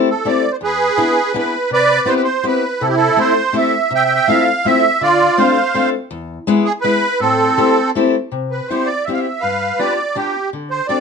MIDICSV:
0, 0, Header, 1, 3, 480
1, 0, Start_track
1, 0, Key_signature, 0, "minor"
1, 0, Tempo, 366300
1, 818, Time_signature, 3, 2, 24, 8
1, 14417, End_track
2, 0, Start_track
2, 0, Title_t, "Accordion"
2, 0, Program_c, 0, 21
2, 127, Note_on_c, 0, 69, 80
2, 344, Note_on_c, 0, 74, 87
2, 356, Note_off_c, 0, 69, 0
2, 679, Note_off_c, 0, 74, 0
2, 685, Note_on_c, 0, 72, 62
2, 741, Note_off_c, 0, 72, 0
2, 830, Note_on_c, 0, 71, 97
2, 831, Note_on_c, 0, 68, 70
2, 1726, Note_off_c, 0, 68, 0
2, 1792, Note_off_c, 0, 71, 0
2, 1812, Note_on_c, 0, 71, 90
2, 2234, Note_off_c, 0, 71, 0
2, 2266, Note_on_c, 0, 74, 118
2, 2272, Note_on_c, 0, 71, 70
2, 2717, Note_on_c, 0, 72, 88
2, 2744, Note_off_c, 0, 74, 0
2, 2807, Note_off_c, 0, 71, 0
2, 2813, Note_off_c, 0, 72, 0
2, 2826, Note_on_c, 0, 71, 85
2, 2911, Note_off_c, 0, 71, 0
2, 2931, Note_on_c, 0, 72, 91
2, 3221, Note_off_c, 0, 72, 0
2, 3234, Note_on_c, 0, 71, 93
2, 3688, Note_on_c, 0, 69, 96
2, 3700, Note_on_c, 0, 64, 69
2, 3710, Note_off_c, 0, 71, 0
2, 3778, Note_off_c, 0, 69, 0
2, 3781, Note_on_c, 0, 67, 74
2, 3868, Note_off_c, 0, 67, 0
2, 3888, Note_on_c, 0, 69, 106
2, 4181, Note_off_c, 0, 69, 0
2, 4190, Note_on_c, 0, 72, 102
2, 4369, Note_off_c, 0, 64, 0
2, 4674, Note_off_c, 0, 72, 0
2, 4674, Note_on_c, 0, 76, 97
2, 5150, Note_off_c, 0, 76, 0
2, 5170, Note_on_c, 0, 76, 80
2, 5180, Note_on_c, 0, 79, 111
2, 5290, Note_off_c, 0, 79, 0
2, 5309, Note_on_c, 0, 79, 89
2, 5419, Note_off_c, 0, 79, 0
2, 5438, Note_on_c, 0, 79, 102
2, 5609, Note_on_c, 0, 77, 104
2, 5611, Note_off_c, 0, 79, 0
2, 5831, Note_off_c, 0, 76, 0
2, 6098, Note_on_c, 0, 76, 114
2, 6106, Note_off_c, 0, 77, 0
2, 6582, Note_on_c, 0, 65, 75
2, 6583, Note_on_c, 0, 74, 104
2, 6586, Note_off_c, 0, 76, 0
2, 7050, Note_on_c, 0, 72, 66
2, 7064, Note_on_c, 0, 77, 85
2, 7066, Note_off_c, 0, 74, 0
2, 7247, Note_off_c, 0, 65, 0
2, 7722, Note_off_c, 0, 72, 0
2, 7729, Note_off_c, 0, 77, 0
2, 8706, Note_on_c, 0, 68, 107
2, 8815, Note_off_c, 0, 68, 0
2, 8925, Note_on_c, 0, 71, 121
2, 9437, Note_off_c, 0, 71, 0
2, 9437, Note_on_c, 0, 69, 105
2, 9459, Note_on_c, 0, 60, 77
2, 10359, Note_off_c, 0, 69, 0
2, 10369, Note_off_c, 0, 60, 0
2, 11156, Note_on_c, 0, 71, 67
2, 11370, Note_on_c, 0, 72, 71
2, 11395, Note_off_c, 0, 71, 0
2, 11604, Note_on_c, 0, 74, 91
2, 11634, Note_off_c, 0, 72, 0
2, 11853, Note_on_c, 0, 76, 80
2, 11860, Note_off_c, 0, 74, 0
2, 11955, Note_off_c, 0, 76, 0
2, 11959, Note_on_c, 0, 77, 71
2, 12018, Note_on_c, 0, 76, 66
2, 12051, Note_off_c, 0, 77, 0
2, 12321, Note_on_c, 0, 77, 85
2, 12336, Note_on_c, 0, 71, 59
2, 12340, Note_off_c, 0, 76, 0
2, 12829, Note_off_c, 0, 77, 0
2, 12829, Note_on_c, 0, 74, 92
2, 13018, Note_off_c, 0, 71, 0
2, 13322, Note_off_c, 0, 74, 0
2, 13325, Note_on_c, 0, 67, 87
2, 13759, Note_off_c, 0, 67, 0
2, 14028, Note_on_c, 0, 72, 91
2, 14244, Note_off_c, 0, 72, 0
2, 14252, Note_on_c, 0, 74, 93
2, 14417, Note_off_c, 0, 74, 0
2, 14417, End_track
3, 0, Start_track
3, 0, Title_t, "Steel-string acoustic guitar"
3, 0, Program_c, 1, 25
3, 327, Note_on_c, 1, 57, 67
3, 330, Note_on_c, 1, 67, 51
3, 335, Note_on_c, 1, 60, 57
3, 338, Note_on_c, 1, 69, 70
3, 339, Note_on_c, 1, 64, 63
3, 580, Note_off_c, 1, 67, 0
3, 581, Note_off_c, 1, 57, 0
3, 582, Note_off_c, 1, 64, 0
3, 584, Note_off_c, 1, 60, 0
3, 584, Note_off_c, 1, 69, 0
3, 796, Note_on_c, 1, 40, 66
3, 1165, Note_off_c, 1, 40, 0
3, 1275, Note_on_c, 1, 62, 61
3, 1278, Note_on_c, 1, 64, 63
3, 1281, Note_on_c, 1, 59, 81
3, 1289, Note_on_c, 1, 68, 62
3, 1291, Note_on_c, 1, 71, 78
3, 1531, Note_off_c, 1, 62, 0
3, 1531, Note_off_c, 1, 64, 0
3, 1534, Note_off_c, 1, 59, 0
3, 1538, Note_off_c, 1, 68, 0
3, 1538, Note_off_c, 1, 71, 0
3, 1758, Note_on_c, 1, 59, 70
3, 1767, Note_on_c, 1, 62, 70
3, 1776, Note_on_c, 1, 68, 63
3, 1778, Note_on_c, 1, 64, 61
3, 1780, Note_on_c, 1, 71, 81
3, 2009, Note_off_c, 1, 59, 0
3, 2014, Note_off_c, 1, 64, 0
3, 2015, Note_off_c, 1, 62, 0
3, 2017, Note_off_c, 1, 68, 0
3, 2020, Note_off_c, 1, 71, 0
3, 2236, Note_on_c, 1, 48, 67
3, 2596, Note_off_c, 1, 48, 0
3, 2691, Note_on_c, 1, 59, 71
3, 2702, Note_on_c, 1, 64, 67
3, 2705, Note_on_c, 1, 60, 70
3, 2714, Note_on_c, 1, 67, 77
3, 2719, Note_on_c, 1, 71, 73
3, 2952, Note_off_c, 1, 59, 0
3, 2954, Note_off_c, 1, 64, 0
3, 2958, Note_off_c, 1, 60, 0
3, 2963, Note_off_c, 1, 67, 0
3, 2963, Note_off_c, 1, 71, 0
3, 3190, Note_on_c, 1, 60, 57
3, 3193, Note_on_c, 1, 67, 58
3, 3197, Note_on_c, 1, 59, 57
3, 3201, Note_on_c, 1, 64, 67
3, 3204, Note_on_c, 1, 71, 70
3, 3442, Note_off_c, 1, 67, 0
3, 3443, Note_off_c, 1, 60, 0
3, 3443, Note_off_c, 1, 64, 0
3, 3445, Note_off_c, 1, 59, 0
3, 3449, Note_off_c, 1, 71, 0
3, 3684, Note_on_c, 1, 48, 77
3, 4042, Note_off_c, 1, 48, 0
3, 4149, Note_on_c, 1, 57, 70
3, 4157, Note_on_c, 1, 60, 57
3, 4159, Note_on_c, 1, 67, 57
3, 4166, Note_on_c, 1, 64, 74
3, 4167, Note_on_c, 1, 69, 70
3, 4405, Note_off_c, 1, 57, 0
3, 4405, Note_off_c, 1, 60, 0
3, 4410, Note_off_c, 1, 64, 0
3, 4410, Note_off_c, 1, 67, 0
3, 4412, Note_off_c, 1, 69, 0
3, 4623, Note_on_c, 1, 60, 66
3, 4630, Note_on_c, 1, 67, 60
3, 4633, Note_on_c, 1, 57, 67
3, 4634, Note_on_c, 1, 64, 60
3, 4637, Note_on_c, 1, 69, 80
3, 4886, Note_off_c, 1, 60, 0
3, 4886, Note_off_c, 1, 64, 0
3, 4887, Note_off_c, 1, 67, 0
3, 4889, Note_off_c, 1, 69, 0
3, 4891, Note_off_c, 1, 57, 0
3, 5118, Note_on_c, 1, 48, 75
3, 5486, Note_off_c, 1, 48, 0
3, 5602, Note_on_c, 1, 57, 69
3, 5612, Note_on_c, 1, 65, 65
3, 5615, Note_on_c, 1, 60, 60
3, 5627, Note_on_c, 1, 64, 62
3, 5627, Note_on_c, 1, 69, 82
3, 5857, Note_off_c, 1, 57, 0
3, 5859, Note_off_c, 1, 60, 0
3, 5860, Note_off_c, 1, 65, 0
3, 5866, Note_off_c, 1, 64, 0
3, 5869, Note_off_c, 1, 69, 0
3, 6092, Note_on_c, 1, 57, 62
3, 6105, Note_on_c, 1, 60, 68
3, 6105, Note_on_c, 1, 65, 66
3, 6106, Note_on_c, 1, 69, 69
3, 6109, Note_on_c, 1, 64, 57
3, 6338, Note_off_c, 1, 57, 0
3, 6345, Note_off_c, 1, 60, 0
3, 6345, Note_off_c, 1, 64, 0
3, 6345, Note_off_c, 1, 65, 0
3, 6345, Note_off_c, 1, 69, 0
3, 6567, Note_on_c, 1, 50, 69
3, 6925, Note_off_c, 1, 50, 0
3, 7045, Note_on_c, 1, 57, 75
3, 7051, Note_on_c, 1, 60, 69
3, 7051, Note_on_c, 1, 65, 75
3, 7057, Note_on_c, 1, 62, 71
3, 7062, Note_on_c, 1, 69, 84
3, 7291, Note_off_c, 1, 57, 0
3, 7292, Note_off_c, 1, 65, 0
3, 7294, Note_off_c, 1, 60, 0
3, 7297, Note_off_c, 1, 62, 0
3, 7297, Note_off_c, 1, 69, 0
3, 7526, Note_on_c, 1, 57, 75
3, 7530, Note_on_c, 1, 60, 58
3, 7536, Note_on_c, 1, 65, 64
3, 7536, Note_on_c, 1, 69, 68
3, 7537, Note_on_c, 1, 62, 62
3, 7772, Note_off_c, 1, 57, 0
3, 7773, Note_off_c, 1, 60, 0
3, 7774, Note_off_c, 1, 65, 0
3, 7774, Note_off_c, 1, 69, 0
3, 7777, Note_off_c, 1, 62, 0
3, 8002, Note_on_c, 1, 40, 81
3, 8359, Note_off_c, 1, 40, 0
3, 8480, Note_on_c, 1, 56, 105
3, 8486, Note_on_c, 1, 59, 88
3, 8489, Note_on_c, 1, 68, 80
3, 8493, Note_on_c, 1, 71, 88
3, 8494, Note_on_c, 1, 64, 92
3, 8727, Note_off_c, 1, 56, 0
3, 8727, Note_off_c, 1, 68, 0
3, 8728, Note_off_c, 1, 59, 0
3, 8728, Note_off_c, 1, 64, 0
3, 8732, Note_off_c, 1, 71, 0
3, 8962, Note_on_c, 1, 56, 63
3, 8969, Note_on_c, 1, 59, 64
3, 8970, Note_on_c, 1, 71, 78
3, 8972, Note_on_c, 1, 68, 66
3, 8980, Note_on_c, 1, 64, 54
3, 9206, Note_off_c, 1, 56, 0
3, 9210, Note_off_c, 1, 59, 0
3, 9210, Note_off_c, 1, 71, 0
3, 9213, Note_off_c, 1, 68, 0
3, 9214, Note_off_c, 1, 64, 0
3, 9436, Note_on_c, 1, 45, 66
3, 9801, Note_off_c, 1, 45, 0
3, 9925, Note_on_c, 1, 57, 63
3, 9927, Note_on_c, 1, 67, 64
3, 9935, Note_on_c, 1, 60, 63
3, 9935, Note_on_c, 1, 69, 88
3, 9937, Note_on_c, 1, 64, 63
3, 10176, Note_off_c, 1, 57, 0
3, 10176, Note_off_c, 1, 67, 0
3, 10178, Note_off_c, 1, 64, 0
3, 10178, Note_off_c, 1, 69, 0
3, 10180, Note_off_c, 1, 60, 0
3, 10421, Note_on_c, 1, 57, 74
3, 10431, Note_on_c, 1, 60, 72
3, 10435, Note_on_c, 1, 64, 70
3, 10436, Note_on_c, 1, 67, 66
3, 10440, Note_on_c, 1, 69, 77
3, 10668, Note_off_c, 1, 57, 0
3, 10673, Note_off_c, 1, 60, 0
3, 10673, Note_off_c, 1, 64, 0
3, 10675, Note_off_c, 1, 67, 0
3, 10677, Note_off_c, 1, 69, 0
3, 10897, Note_on_c, 1, 48, 64
3, 11261, Note_off_c, 1, 48, 0
3, 11405, Note_on_c, 1, 64, 58
3, 11409, Note_on_c, 1, 59, 64
3, 11414, Note_on_c, 1, 60, 61
3, 11422, Note_on_c, 1, 67, 75
3, 11644, Note_off_c, 1, 64, 0
3, 11646, Note_off_c, 1, 59, 0
3, 11650, Note_off_c, 1, 60, 0
3, 11650, Note_off_c, 1, 67, 0
3, 11895, Note_on_c, 1, 59, 61
3, 11904, Note_on_c, 1, 60, 53
3, 11910, Note_on_c, 1, 64, 44
3, 11910, Note_on_c, 1, 67, 59
3, 12128, Note_off_c, 1, 59, 0
3, 12133, Note_off_c, 1, 60, 0
3, 12134, Note_off_c, 1, 64, 0
3, 12136, Note_off_c, 1, 67, 0
3, 12354, Note_on_c, 1, 43, 61
3, 12711, Note_off_c, 1, 43, 0
3, 12833, Note_on_c, 1, 65, 63
3, 12839, Note_on_c, 1, 59, 62
3, 12842, Note_on_c, 1, 62, 60
3, 12847, Note_on_c, 1, 67, 67
3, 13078, Note_off_c, 1, 59, 0
3, 13078, Note_off_c, 1, 65, 0
3, 13082, Note_off_c, 1, 62, 0
3, 13083, Note_off_c, 1, 67, 0
3, 13305, Note_on_c, 1, 62, 57
3, 13313, Note_on_c, 1, 65, 52
3, 13314, Note_on_c, 1, 59, 68
3, 13324, Note_on_c, 1, 67, 67
3, 13552, Note_off_c, 1, 62, 0
3, 13553, Note_off_c, 1, 59, 0
3, 13556, Note_off_c, 1, 65, 0
3, 13558, Note_off_c, 1, 67, 0
3, 13799, Note_on_c, 1, 50, 62
3, 14149, Note_off_c, 1, 50, 0
3, 14270, Note_on_c, 1, 60, 69
3, 14274, Note_on_c, 1, 62, 62
3, 14277, Note_on_c, 1, 66, 62
3, 14285, Note_on_c, 1, 69, 79
3, 14417, Note_off_c, 1, 60, 0
3, 14417, Note_off_c, 1, 62, 0
3, 14417, Note_off_c, 1, 66, 0
3, 14417, Note_off_c, 1, 69, 0
3, 14417, End_track
0, 0, End_of_file